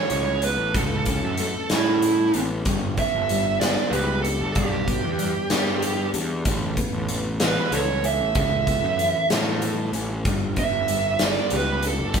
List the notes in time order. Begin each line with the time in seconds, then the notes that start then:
Already playing: A2 A3 C#4 C#5
0.10 C#2 E4, closed hi-hat
0.42 B3 B4, closed hi-hat
0.57 A1
0.74 C#2 A2 A4, kick, closed hi-hat
1.06 C#4, kick, closed hi-hat
1.23 F#2
1.37 A3, closed hi-hat
1.42 A4
1.70 A2 C#4, snare, closed hi-hat
1.75 E4
2.02 E4, closed hi-hat
2.34 A1 B3, closed hi-hat
2.65 G1 G2, kick, closed hi-hat
2.97 B3 E5, kick, closed hi-hat
3.15 G1
3.29 G3, closed hi-hat
3.60 G1 B3 D5, snare, closed hi-hat
3.90 C#2 G4 B4, closed hi-hat
4.21 A4, closed hi-hat
4.26 D4
4.40 G1
4.52 B1 G2 G4, kick, closed hi-hat
4.88 B3, kick, closed hi-hat
5.04 E2
5.19 G3, closed hi-hat
5.50 G2 B3, snare, closed hi-hat
5.82 G4, closed hi-hat
6.14 E2 D4, closed hi-hat
6.45 A1 A2, kick, closed hi-hat
6.77 B3, kick, closed hi-hat
6.93 A1
7.09 E3, closed hi-hat
7.40 A1 B3 B4, snare, closed hi-hat
7.72 C#2 A4 C#5, closed hi-hat
8.03 C#4 E5, closed hi-hat
8.21 A1
8.35 C#2 A2 E5, kick, closed hi-hat
8.67 B3, kick, closed hi-hat
8.84 F#2
8.99 E3, closed hi-hat
9.30 A2 B3, snare, closed hi-hat
9.62 A4, closed hi-hat
9.93 A1 C#4, closed hi-hat
10.25 G1 G2, kick, closed hi-hat
10.56 B3 E5, kick, closed hi-hat
10.72 G1
10.88 G3, closed hi-hat
11.19 G1 B3, snare, closed hi-hat
11.24 D5
11.50 C#2 G4, closed hi-hat
11.56 B4
11.83 D4, closed hi-hat
11.87 A4
11.99 G1
12.14 B1 G2, kick, closed hi-hat